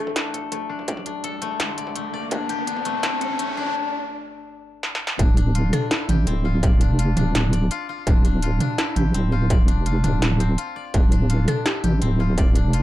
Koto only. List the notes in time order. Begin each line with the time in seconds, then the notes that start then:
Already playing: A3 D4 G4 A4 D5
0.16 D4
0.34 A4
0.52 A3
0.69 D4
0.88 D5
1.06 D4
1.24 A4
1.42 A3
1.60 D3
1.78 D5
1.96 A3
2.14 D5
2.31 D4
2.49 G4
2.67 D4
2.85 A3
3.03 D4
3.21 A4
3.39 A3
3.57 D4
5.19 D4
5.37 D4
5.55 F4
5.73 D4
5.91 E4
6.09 G4
6.27 C4
6.45 F4
6.63 D5
6.81 D4
6.99 F4
7.17 D4
7.35 D4
7.53 D5
7.71 F4
7.89 F4
8.07 D4
8.25 D4
8.43 F4
8.60 D4
8.79 E4
8.96 G4
9.14 C4
9.32 F4
9.50 D5
9.68 D4
9.86 F4
10.04 D4
10.22 D4
10.40 C4
10.58 F4
10.76 D5
10.94 D4
11.12 D4
11.30 F4
11.48 D4
11.66 E4
11.84 G4
12.02 C4
12.20 F4
12.38 D5
12.56 D4
12.74 F4